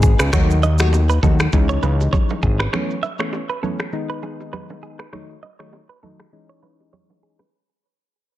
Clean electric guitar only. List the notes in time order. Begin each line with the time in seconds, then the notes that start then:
0.03 G#4
0.20 B4
0.33 C#5
0.63 D#5
0.80 C#5
1.10 B4
1.23 A4
1.69 C#5
1.83 B4
2.13 C#5
2.43 G#4
2.60 B4
2.73 C#5
3.03 E5
3.20 C#5
3.50 B4
3.63 A4
4.10 B4
4.23 G#4
4.53 B4
4.83 G#4
5.00 B4
5.13 C#5
5.43 D#5
5.59 C#5
5.89 B4
6.03 A4
6.49 C#5
6.63 B4
6.93 C#5
7.23 G#4
7.39 B4